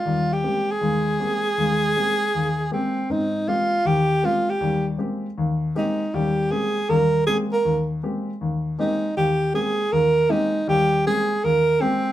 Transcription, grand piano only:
X:1
M:4/4
L:1/8
Q:"Swing" 1/4=158
K:Ablyd
V:1 name="Grand piano"
[E,,G,]2 [A,B,CG] z [E,,A,]2 [A,B,CG] z | [E,,A,]2 [A,B,CG] z E,,2 [A,B,CG] z | [K:Ab] [A,,C]2 [A,B,CG] z E,,2 [A,B,CG] z | [E,,G,]2 [A,B,CG] z E,,2 [A,B,CG] z |
[E,,G,]2 [A,B,CG] z [E,,G,]2 [A,B,CG] z | E,,2 [A,B,CG] z E,,2 [A,B,CG] z | E,,2 [A,B,CG] z E,,2 [A,B,CG] z | [E,,G,]2 [A,B,CG] z E,,2 [A,B,CG] z |]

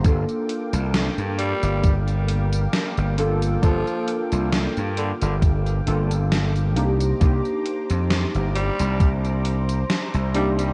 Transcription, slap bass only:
X:1
M:4/4
L:1/16
Q:"Swing 16ths" 1/4=67
K:Gm
V:1 name="Slap bass" clef=bass
G,,, z2 C,,2 G,,2 G,,,4- G,,, z G,,,3 | G,,, z2 C,,2 G,,2 G,,,3 G,,,4 C,,2 | C,, z2 F,,2 G,,,2 C,,4- C,, z C,,3 |]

